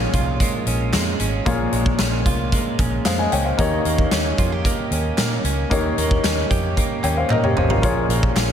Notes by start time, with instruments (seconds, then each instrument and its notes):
Already playing: grand piano A#2 A#3 F4 G#4 C#5, clean electric guitar F3 G#3 C#4 G#4
0.13 fingered electric bass C2, clean electric guitar F4, kick, closed hi-hat
0.40 clean electric guitar G#3, kick, closed hi-hat
0.66 fingered electric bass A#1, clean electric guitar C#4, closed hi-hat
0.93 fingered electric bass F2, clean electric guitar G#3, snare, clap, closed hi-hat
1.20 fingered electric bass G#1, clean electric guitar C#4, closed hi-hat
1.45 fingered electric bass A#1, grand piano A#2 A#3 F4 G#4 C#5, clean electric guitar F3, kick, closed hi-hat
1.73 fingered electric bass A#1, clean electric guitar G#3, closed hi-hat
1.86 kick
1.99 fingered electric bass A#1, clean electric guitar C#4, snare, clap, closed hi-hat
2.26 fingered electric bass C2, clean electric guitar F4, kick, closed hi-hat
2.52 clean electric guitar G#3, kick, closed hi-hat
2.79 fingered electric bass A#1, clean electric guitar C#4, kick, closed hi-hat
3.05 fingered electric bass F2, clean electric guitar G#3, grand piano C5 F5, snare, clap, closed hi-hat
3.19 grand piano D#5 G#5
3.32 fingered electric bass C#2, clean electric guitar C#4, grand piano C#5 G5, closed hi-hat
3.45 grand piano C5 F5
3.58 fingered electric bass D#2, grand piano D#3 A#3 D#4 G4 C#5, clean electric guitar A#3, kick, closed hi-hat
3.85 fingered electric bass D#2, clean electric guitar A#3, closed hi-hat
3.98 kick
4.11 fingered electric bass D#2, clean electric guitar C#4, snare, clap, closed hi-hat
4.38 fingered electric bass F2, clean electric guitar F4, kick, closed hi-hat
4.52 clean electric guitar G4
4.65 clean electric guitar A#3, kick, closed hi-hat
4.91 fingered electric bass D#2, clean electric guitar C#4, closed hi-hat
5.18 fingered electric bass A#2, clean electric guitar A#3, snare, clap, closed hi-hat
5.44 fingered electric bass C#2, clean electric guitar C#4, closed hi-hat
5.70 fingered electric bass D#2, grand piano D#3 A#3 D#4 G4 C#5, clean electric guitar A#3, kick, closed hi-hat
5.97 fingered electric bass D#2, clean electric guitar A#3, closed hi-hat
6.11 kick
6.24 fingered electric bass D#2, clean electric guitar C#4, snare, clap, closed hi-hat
6.51 fingered electric bass F2, clean electric guitar G4, kick, closed hi-hat
6.77 clean electric guitar A#3, kick, closed hi-hat
7.04 fingered electric bass D#2, clean electric guitar C#4, grand piano C#5 G5, clap, closed hi-hat
7.17 grand piano C5 F5
7.30 fingered electric bass A#2, clean electric guitar A#3, grand piano A#4 D#5, clap, high tom
7.43 grand piano G4 C#5, mid tom
7.56 fingered electric bass G#1, clean electric guitar C#4, grand piano G4 C5, mid tom
7.70 grand piano F4 A#4, floor tom
7.82 fingered electric bass A#1, grand piano A#2 A#3 F4 G#4 C#5, clean electric guitar F3, kick, closed hi-hat
8.09 fingered electric bass A#1, clean electric guitar A#3, closed hi-hat
8.23 kick
8.36 fingered electric bass A#1, clean electric guitar C#4, snare, clap, closed hi-hat